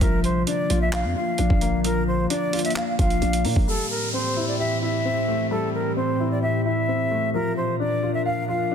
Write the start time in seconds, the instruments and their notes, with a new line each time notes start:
0.01 808-style bass A#1, ambient pad D3 F3 A#3, grand piano F3, flute A#4, kick, closed hi-hat
0.24 flute C5, closed hi-hat
0.47 grand piano D4, flute D5, closed hi-hat
0.70 808-style bass A#1, grand piano F4, closed hi-hat
0.81 flute E5
0.93 grand piano F5, flute F5, clap, closed hi-hat
1.04 808-style bass F2
1.16 grand piano F4, flute F5
1.38 808-style bass A#1, grand piano D4, closed hi-hat
1.50 808-style bass A#1, kick
1.61 grand piano A#3, closed hi-hat
1.84 grand piano F3, flute A#4, closed hi-hat
2.07 flute C5
2.30 grand piano D4, flute D5, closed hi-hat
2.53 grand piano F4, closed hi-hat, open hi-hat
2.59 closed hi-hat
2.65 flute E5, closed hi-hat
2.70 closed hi-hat
2.76 grand piano F5, flute F5, clap
2.99 808-style bass A#1, grand piano F4, flute F5, kick, closed hi-hat
3.10 closed hi-hat
3.22 808-style bass A#1, grand piano D4, closed hi-hat
3.33 closed hi-hat
3.45 808-style bass A#2, grand piano A#3, open hi-hat
3.56 808-style bass A#1, kick
3.68 ambient pad A2 E3 C4 G4, grand piano G3, flute A4, downlifter
3.91 flute A#4
4.13 grand piano C4, flute C5
4.36 grand piano E4
4.48 flute D5
4.59 grand piano G4, flute E5
4.82 grand piano E4, flute E5
5.05 grand piano C4
5.28 grand piano A3
5.51 grand piano G3, flute A4
5.74 flute A#4
5.97 grand piano C4, flute C5
6.20 grand piano E4
6.31 flute D5
6.42 grand piano G4, flute E5
6.65 grand piano E4, flute E5
6.88 grand piano C4
7.11 grand piano A3
7.34 ambient pad A#2 F3 D4 A#4, grand piano F3, flute A#4
7.57 flute C5
7.80 grand piano D4, flute D5
8.03 grand piano F4
8.14 flute E5
8.26 flute F5, grand piano F5
8.48 grand piano F4, flute F5
8.71 grand piano D4